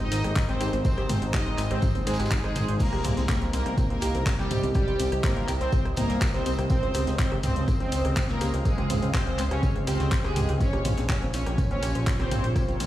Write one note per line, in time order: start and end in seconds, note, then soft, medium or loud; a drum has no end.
0.00 0.10 G#1 medium
0.00 2.76 G#3 medium
0.00 0.07 C4 medium
0.00 2.76 D#4 medium
0.00 0.33 D#4 loud
0.00 0.83 A#4 medium
0.00 0.07 C5 medium
0.00 0.33 D#5 loud
0.12 0.22 G#1 loud
0.12 0.17 C4 medium
0.12 0.17 C5 medium
0.12 snare loud
0.12 open hi-hat loud
0.12 tambourine medium
0.24 0.34 G#1 medium
0.24 0.29 G4 medium
0.24 0.29 G5 medium
0.24 cross-stick medium
0.24 closed hi-hat soft
0.36 0.44 C4 medium
0.36 0.44 C5 medium
0.36 kick loud
0.36 clap loud
0.36 closed hi-hat soft
0.36 mid tom medium
0.36 tambourine medium
0.49 0.59 G#1 medium
0.49 0.53 C4 medium
0.49 0.74 C4 medium
0.49 0.74 C5 loud
0.49 0.53 C5 medium
0.49 closed hi-hat soft
0.61 0.71 G#1 loud
0.61 0.65 G4 medium
0.61 0.65 G5 medium
0.61 cross-stick medium
0.61 open hi-hat medium
0.61 tambourine medium
0.73 0.83 G#1 medium
0.73 0.81 C4 medium
0.73 0.81 C5 medium
0.73 closed hi-hat soft
0.85 1.18 C4 loud
0.85 0.90 C4 medium
0.85 2.78 G#4 medium
0.85 0.90 C5 medium
0.85 1.19 C5 loud
0.85 kick loud
0.85 closed hi-hat soft
0.85 tambourine medium
0.98 1.08 G#1 medium
0.98 1.02 G4 medium
0.98 1.02 G5 medium
0.98 cross-stick medium
0.98 closed hi-hat soft
1.09 1.20 G#1 loud
1.09 1.17 C4 medium
1.09 1.17 C5 medium
1.09 snare soft
1.09 mid tom medium
1.09 open hi-hat loud
1.09 tambourine medium
1.22 1.32 G#1 medium
1.22 1.26 C4 medium
1.22 1.26 C5 medium
1.22 closed hi-hat soft
1.34 1.59 D#4 loud
1.34 1.38 G4 medium
1.34 1.59 D#5 loud
1.34 1.38 G5 medium
1.34 kick loud
1.34 cross-stick medium
1.34 snare loud
1.34 clap loud
1.34 closed hi-hat soft
1.34 tambourine medium
1.46 1.56 G#1 medium
1.46 1.54 C4 medium
1.46 1.54 C5 medium
1.46 closed hi-hat soft
1.58 1.69 G#1 loud
1.58 1.63 C4 medium
1.58 1.63 C5 medium
1.58 clap soft
1.58 open hi-hat medium
1.58 tambourine medium
1.71 1.81 G#1 medium
1.71 1.96 C4 loud
1.71 1.75 G4 medium
1.71 1.96 C5 loud
1.71 1.75 G5 medium
1.71 cross-stick medium
1.71 closed hi-hat soft
1.82 1.90 C4 medium
1.82 1.90 C5 medium
1.82 kick loud
1.82 closed hi-hat soft
1.82 mid tom loud
1.82 tambourine loud
1.95 2.05 D#1 medium
1.95 2.00 C4 medium
1.95 2.00 C5 medium
1.95 closed hi-hat soft
2.07 2.18 G#1 loud
2.07 2.32 G#3 loud
2.07 2.15 C4 loud
2.07 2.32 G#4 medium
2.07 2.15 C5 medium
2.07 cross-stick soft
2.07 snare medium
2.07 open hi-hat loud
2.07 tambourine medium
2.13 snare loud
2.13 tambourine medium
2.19 2.29 G#1 medium
2.19 2.27 G4 medium
2.19 2.27 G5 medium
2.19 snare medium
2.19 closed hi-hat soft
2.19 tambourine medium
2.25 snare medium
2.25 tambourine medium
2.31 2.39 D#4 loud
2.31 2.39 D#5 medium
2.31 kick loud
2.31 snare loud
2.31 clap loud
2.31 closed hi-hat soft
2.44 2.54 G#1 medium
2.44 2.69 G#3 loud
2.44 2.69 G#4 loud
2.44 2.51 C5 medium
2.44 2.51 C6 medium
2.44 cross-stick medium
2.44 snare soft
2.44 closed hi-hat soft
2.55 2.66 G#1 loud
2.55 2.60 C5 loud
2.55 2.60 C6 medium
2.55 mid tom loud
2.55 open hi-hat medium
2.55 tambourine medium
2.68 2.78 G#1 medium
2.68 2.76 C5 medium
2.68 2.76 C6 medium
2.68 closed hi-hat soft
2.79 3.14 A#3 loud
2.79 6.66 C4 medium
2.79 2.85 C4 medium
2.79 6.66 G4 medium
2.79 3.14 A#4 loud
2.79 2.85 C5 medium
2.79 10.57 D#5 medium
2.79 kick loud
2.79 closed hi-hat soft
2.79 crash medium
2.79 tambourine medium
2.93 3.03 C2 medium
2.93 2.97 G4 medium
2.93 2.97 G5 medium
2.93 cross-stick soft
2.93 closed hi-hat soft
3.04 3.15 C2 loud
3.04 3.12 C4 medium
3.04 3.12 C5 medium
3.04 mid tom medium
3.04 open hi-hat loud
3.04 tambourine medium
3.17 3.27 C2 medium
3.17 3.22 C4 medium
3.17 3.22 C5 medium
3.17 snare medium
3.17 closed hi-hat soft
3.29 3.46 A#3 medium
3.29 3.34 G4 medium
3.29 3.46 A#4 medium
3.29 3.34 G5 medium
3.29 kick loud
3.29 cross-stick soft
3.29 snare loud
3.29 clap loud
3.29 closed hi-hat soft
3.29 tambourine medium
3.41 3.51 C2 medium
3.41 3.49 C4 medium
3.41 3.49 C5 medium
3.41 closed hi-hat soft
3.53 3.64 C2 loud
3.53 3.78 A#3 medium
3.53 3.58 C4 medium
3.53 3.78 A#4 medium
3.53 3.58 C5 medium
3.53 open hi-hat loud
3.53 tambourine medium
3.66 3.76 C2 medium
3.66 3.70 G4 medium
3.66 3.70 G5 medium
3.66 cross-stick medium
3.66 closed hi-hat soft
3.78 3.86 C4 medium
3.78 3.86 C5 medium
3.78 kick loud
3.78 closed hi-hat soft
3.78 mid tom medium
3.78 tambourine loud
3.90 4.00 C2 medium
3.90 4.23 A#3 loud
3.90 3.95 C4 medium
3.90 4.23 A#4 medium
3.90 3.95 C5 medium
3.90 closed hi-hat soft
4.01 4.13 C2 loud
4.01 4.07 G4 medium
4.01 4.07 G5 medium
4.01 cross-stick soft
4.01 snare soft
4.01 open hi-hat loud
4.01 tambourine medium
4.15 4.25 C2 loud
4.15 4.22 C4 medium
4.15 4.22 C5 medium
4.15 closed hi-hat soft
4.26 4.31 C4 medium
4.26 4.31 C5 medium
4.26 kick loud
4.26 snare loud
4.26 clap loud
4.26 closed hi-hat soft
4.26 tambourine loud
4.39 4.49 C2 medium
4.39 4.64 G3 loud
4.39 4.64 G4 loud
4.39 4.43 G4 medium
4.39 4.43 G5 medium
4.39 cross-stick soft
4.39 snare medium
4.39 closed hi-hat soft
4.51 4.61 C2 loud
4.51 4.59 C4 medium
4.51 4.59 C5 medium
4.51 mid tom loud
4.51 open hi-hat medium
4.51 tambourine medium
4.63 4.73 C2 medium
4.63 4.68 C4 medium
4.63 4.68 C5 medium
4.63 closed hi-hat soft
4.75 5.09 G3 loud
4.75 4.80 G4 medium
4.75 5.09 G4 loud
4.75 6.68 A#4 medium
4.75 4.80 G5 medium
4.75 kick loud
4.75 cross-stick medium
4.75 closed hi-hat soft
4.75 tambourine medium
4.88 4.98 C2 medium
4.88 4.95 C4 medium
4.88 4.95 C5 medium
4.88 closed hi-hat soft
4.99 5.10 C2 medium
4.99 5.04 C4 medium
4.99 5.04 C5 medium
4.99 snare soft
4.99 open hi-hat loud
4.99 tambourine medium
5.12 5.22 C2 medium
5.12 5.17 G4 medium
5.12 5.17 G5 medium
5.12 cross-stick medium
5.12 closed hi-hat soft
5.24 5.49 A#3 loud
5.24 5.32 C4 medium
5.24 5.49 A#4 loud
5.24 5.32 C5 medium
5.24 kick loud
5.24 snare loud
5.24 clap loud
5.24 closed hi-hat soft
5.24 mid tom medium
5.24 tambourine medium
5.37 5.46 C2 medium
5.37 5.41 C4 medium
5.37 5.41 C5 medium
5.37 closed hi-hat soft
5.48 5.59 C2 loud
5.48 5.53 G4 medium
5.48 5.53 G5 medium
5.48 cross-stick medium
5.48 clap soft
5.48 open hi-hat loud
5.48 tambourine medium
5.61 5.71 C2 medium
5.61 5.68 C4 medium
5.61 5.86 C4 loud
5.61 5.86 C5 loud
5.61 5.68 C5 medium
5.61 closed hi-hat soft
5.72 5.78 C4 medium
5.72 5.78 C5 medium
5.72 kick loud
5.72 closed hi-hat soft
5.72 tambourine medium
5.85 5.95 C2 medium
5.85 5.90 G4 medium
5.85 5.90 G5 medium
5.85 cross-stick medium
5.85 closed hi-hat soft
5.96 6.08 C2 loud
5.96 6.22 A#3 loud
5.96 6.05 C4 medium
5.96 6.22 A#4 loud
5.96 6.05 C5 medium
5.96 snare soft
5.96 mid tom medium
5.96 open hi-hat loud
5.96 tambourine medium
6.10 6.20 C2 loud
6.10 6.14 C4 medium
6.10 6.14 C5 medium
6.10 snare medium
6.10 closed hi-hat soft
6.21 6.26 G4 medium
6.21 6.26 G5 medium
6.21 kick loud
6.21 cross-stick soft
6.21 snare loud
6.21 clap loud
6.21 closed hi-hat soft
6.21 tambourine loud
6.34 6.44 C2 medium
6.34 6.41 C4 medium
6.34 6.59 C4 loud
6.34 6.41 C5 medium
6.34 6.59 C5 loud
6.34 snare soft
6.34 closed hi-hat soft
6.46 6.56 C2 loud
6.46 6.51 C4 medium
6.46 6.51 C5 medium
6.46 open hi-hat loud
6.46 tambourine medium
6.59 6.68 C2 medium
6.59 6.63 G4 medium
6.59 6.63 G5 medium
6.59 cross-stick medium
6.59 closed hi-hat soft
6.70 6.78 C4 medium
6.70 7.04 C4 loud
6.70 10.57 C4 medium
6.70 10.57 G#4 medium
6.70 7.04 C5 loud
6.70 6.78 C5 medium
6.70 10.57 F5 medium
6.70 kick loud
6.70 closed hi-hat soft
6.70 mid tom medium
6.70 tambourine medium
6.83 6.93 C#2 medium
6.83 6.87 C4 medium
6.83 6.87 C5 medium
6.83 closed hi-hat soft
6.94 7.05 C#2 loud
6.94 6.99 G4 medium
6.94 6.99 G5 medium
6.94 cross-stick medium
6.94 open hi-hat loud
6.94 tambourine medium
7.07 7.17 C#2 medium
7.07 7.15 C4 medium
7.07 7.15 C5 medium
7.07 snare medium
7.07 closed hi-hat soft
7.19 7.24 C4 medium
7.19 7.36 C4 medium
7.19 7.24 C5 medium
7.19 7.36 C5 medium
7.19 kick loud
7.19 snare loud
7.19 clap loud
7.19 closed hi-hat soft
7.19 tambourine medium
7.32 7.42 C#2 medium
7.32 7.36 G4 medium
7.32 7.36 G5 medium
7.32 cross-stick medium
7.32 closed hi-hat soft
7.43 7.54 C#2 loud
7.43 7.51 C4 medium
7.43 7.69 C4 loud
7.43 7.68 C5 medium
7.43 7.51 C5 medium
7.43 mid tom medium
7.43 open hi-hat loud
7.43 tambourine medium
7.56 7.66 C#2 loud
7.56 7.61 C4 medium
7.56 7.61 C5 medium
7.56 closed hi-hat soft
7.68 7.73 G4 medium
7.68 7.73 G5 medium
7.68 kick loud
7.68 cross-stick medium
7.68 closed hi-hat soft
7.68 tambourine medium
7.80 7.90 C#2 medium
7.80 8.13 C4 loud
7.80 7.88 C4 medium
7.80 7.88 C5 medium
7.80 8.13 C5 medium
7.80 closed hi-hat soft
7.92 8.03 C#2 loud
7.92 7.97 C4 medium
7.92 7.97 C5 medium
7.92 snare soft
7.92 open hi-hat loud
7.92 tambourine medium
8.05 8.15 C#2 medium
8.05 8.09 G4 medium
8.05 8.09 G5 medium
8.05 cross-stick medium
8.05 closed hi-hat soft
8.17 8.25 C4 medium
8.17 8.25 C5 medium
8.17 kick loud
8.17 snare loud
8.17 clap loud
8.17 closed hi-hat soft
8.17 mid tom medium
8.17 tambourine loud
8.29 8.39 C#2 medium
8.29 8.54 A#3 medium
8.29 8.34 C4 medium
8.29 8.54 A#4 loud
8.29 8.34 C5 medium
8.29 snare medium
8.29 closed hi-hat soft
8.41 8.52 C#2 loud
8.41 8.46 G4 medium
8.41 8.46 G5 medium
8.41 cross-stick medium
8.41 open hi-hat loud
8.41 tambourine medium
8.54 8.64 C#2 medium
8.54 8.61 C4 medium
8.54 8.61 C5 medium
8.54 closed hi-hat soft
8.65 8.99 G#3 loud
8.65 8.70 C4 medium
8.65 8.99 G#4 medium
8.65 8.70 C5 medium
8.65 kick loud
8.65 closed hi-hat soft
8.65 tambourine medium
8.78 8.88 C#2 medium
8.78 8.83 G4 medium
8.78 8.83 G5 medium
8.78 cross-stick medium
8.78 closed hi-hat soft
8.90 9.00 C#2 loud
8.90 8.98 C4 medium
8.90 8.98 C5 medium
8.90 snare soft
8.90 mid tom medium
8.90 open hi-hat loud
8.90 tambourine medium
9.02 9.12 C#2 medium
9.02 9.07 C4 medium
9.02 9.07 C5 medium
9.02 closed hi-hat soft
9.14 9.39 C4 medium
9.14 9.19 G4 medium
9.14 9.39 C5 loud
9.14 9.19 G5 medium
9.14 kick loud
9.14 cross-stick medium
9.14 snare loud
9.14 clap loud
9.14 closed hi-hat soft
9.14 tambourine medium
9.27 9.37 C#2 medium
9.27 9.34 C4 medium
9.27 9.34 C5 medium
9.27 closed hi-hat soft
9.38 9.49 C#2 loud
9.38 9.43 C4 medium
9.38 9.43 C5 medium
9.38 clap soft
9.38 open hi-hat loud
9.38 tambourine medium
9.51 9.61 C#2 medium
9.51 9.76 C#4 loud
9.51 9.56 G4 medium
9.51 9.76 C#5 loud
9.51 9.56 G5 medium
9.51 cross-stick medium
9.51 closed hi-hat soft
9.63 9.71 C4 medium
9.63 9.71 C5 medium
9.63 kick loud
9.63 closed hi-hat soft
9.63 mid tom medium
9.63 tambourine medium
9.76 9.85 C#2 medium
9.76 9.80 C4 medium
9.76 9.80 C5 medium
9.76 closed hi-hat soft
9.87 9.98 C#2 loud
9.87 10.12 C4 loud
9.87 9.99 G4 loud
9.87 10.12 C5 medium
9.87 9.99 G5 medium
9.87 cross-stick medium
9.87 snare soft
9.87 open hi-hat loud
9.87 tambourine medium
10.00 10.10 C#2 medium
10.00 10.07 C#4 medium
10.00 10.07 C#5 medium
10.00 snare medium
10.00 closed hi-hat soft
10.12 10.20 C4 loud
10.12 10.20 C5 medium
10.12 kick loud
10.12 snare loud
10.12 clap loud
10.12 closed hi-hat soft
10.12 tambourine loud
10.24 10.34 C#2 medium
10.24 10.49 G#3 medium
10.24 10.35 G4 loud
10.24 10.49 G#4 loud
10.24 10.35 G5 medium
10.24 cross-stick medium
10.24 snare soft
10.24 closed hi-hat soft
10.36 10.47 C#2 loud
10.36 10.44 G4 medium
10.36 10.44 G5 medium
10.36 mid tom medium
10.36 open hi-hat loud
10.36 tambourine medium
10.49 10.59 C#2 medium
10.49 10.60 G4 medium
10.49 10.60 G5 medium
10.49 closed hi-hat soft
10.61 12.87 A#3 medium
10.61 10.65 C4 medium
10.61 10.94 C#4 loud
10.61 12.87 F4 medium
10.61 10.65 C5 medium
10.61 10.94 C#5 loud
10.61 12.87 C#5 medium
10.61 12.54 C6 medium
10.61 kick loud
10.61 closed hi-hat soft
10.61 tambourine medium
10.73 10.83 A#1 medium
10.73 10.78 G4 medium
10.73 10.78 G5 medium
10.73 cross-stick medium
10.73 closed hi-hat soft
10.85 10.96 A#1 loud
10.85 10.93 C4 medium
10.85 10.93 C5 medium
10.85 mid tom medium
10.85 open hi-hat loud
10.85 tambourine medium
10.97 11.07 A#1 medium
10.97 11.02 C4 medium
10.97 11.02 C5 medium
10.97 snare medium
10.97 closed hi-hat soft
11.09 11.26 C#4 medium
11.09 11.14 G4 medium
11.09 11.26 C#5 medium
11.09 11.14 G5 medium
11.09 kick loud
11.09 cross-stick medium
11.09 snare loud
11.09 clap loud
11.09 closed hi-hat soft
11.09 tambourine medium
11.22 11.32 A#1 medium
11.22 11.29 C4 medium
11.22 11.29 C5 medium
11.22 closed hi-hat soft
11.33 11.44 A#1 loud
11.33 11.38 C4 medium
11.33 11.59 C#4 loud
11.33 11.38 C5 medium
11.33 11.59 C#5 medium
11.33 open hi-hat medium
11.33 tambourine medium
11.46 11.56 A#1 medium
11.46 11.51 G4 medium
11.46 11.51 G5 medium
11.46 cross-stick medium
11.46 closed hi-hat soft
11.58 11.66 C4 medium
11.58 11.66 C5 medium
11.58 kick loud
11.58 closed hi-hat soft
11.58 mid tom loud
11.58 tambourine medium
11.71 11.81 A#1 medium
11.71 11.75 C4 medium
11.71 12.04 C#4 loud
11.71 11.75 C5 medium
11.71 12.04 C#5 loud
11.71 closed hi-hat soft
11.83 11.93 A#1 loud
11.83 11.87 G4 medium
11.83 11.87 G5 medium
11.83 cross-stick medium
11.83 snare soft
11.83 open hi-hat loud
11.83 tambourine medium
11.95 12.05 A#1 loud
11.95 12.03 C4 medium
11.95 12.03 C5 medium
11.95 closed hi-hat soft
12.06 12.12 C4 medium
12.06 12.12 C5 medium
12.06 kick loud
12.06 snare loud
12.06 clap loud
12.06 closed hi-hat soft
12.06 tambourine medium
12.19 12.29 A#1 medium
12.19 12.45 C4 loud
12.19 12.24 G4 medium
12.19 12.45 C5 loud
12.19 12.24 G5 medium
12.19 cross-stick medium
12.19 snare medium
12.19 closed hi-hat soft
12.31 12.42 A#1 loud
12.31 12.39 C4 medium
12.31 12.39 C5 medium
12.31 mid tom medium
12.31 open hi-hat medium
12.31 tambourine medium
12.44 12.54 A#1 loud
12.44 12.48 C4 medium
12.44 12.48 C5 medium
12.44 closed hi-hat soft
12.56 12.60 G4 medium
12.56 12.60 G5 medium
12.56 kick loud
12.56 cross-stick medium
12.56 closed hi-hat soft
12.56 tambourine medium
12.68 12.78 A#1 medium
12.68 12.76 C4 medium
12.68 12.76 C5 medium
12.68 closed hi-hat soft
12.80 12.87 A#1 loud
12.80 12.85 C4 medium
12.80 12.85 C5 medium
12.80 snare soft
12.80 open hi-hat loud
12.80 tambourine medium